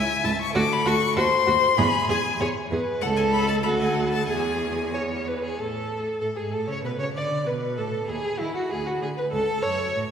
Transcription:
Already playing: E5 G#5
0.24 C#2 E4 A5
0.42 C#6
0.53 D2 F#4 A4 D6
0.73 B5
0.86 D2 F#4 C#6
1.16 D#2 F#4 C5 C6
1.47 D#2 F#4
1.78 E2 G#4 B5
2.09 E2 G#4 G#5
2.40 E2 G#4 C#5
2.71 E2 G#4 B4
3.01 C#2 A4 F#5
3.17 G#5
3.32 B5
3.48 A5
3.63 D2 F#4 A4 B5
3.80 G#5
3.95 F#5
4.13 A5
4.28 E2 G#4 G#5
4.94 C#5
5.27 B4
5.43 G#4
5.58 A2 A4
6.21 A2 A4
6.36 G#2 G#4
6.52 A2 A4
6.68 C#3 C#5
6.72 C#5
6.83 B2 B4
6.99 C#3 C#5
7.14 D3 D5
7.46 B2 B4
7.76 A2 A4
8.08 D#2 G#4 B5
8.39 D#3 E4
8.55 F#4
8.70 D2 G#4
8.85 F#4
9.01 D3 G#4
9.17 B4
9.32 C#2 A4 E6
9.62 F#2 C#5
9.95 A2 C#6

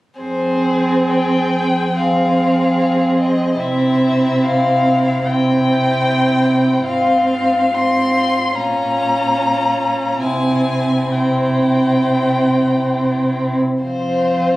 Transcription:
0.19 F2 C4 G#4 C5
1.09 G5
1.95 C4 G#4 F5
3.20 D#5
3.60 C3 C4 E4 E5
4.44 F5
5.26 C4 E4 G5
6.86 G#2 C4 F4 F5
7.72 C4 F4 C6
8.55 A#2 C#4 F4 A#5
10.21 C3 C4 E4 G#5
11.11 C4 E4 G5
13.82 F2 C4 F4 C5

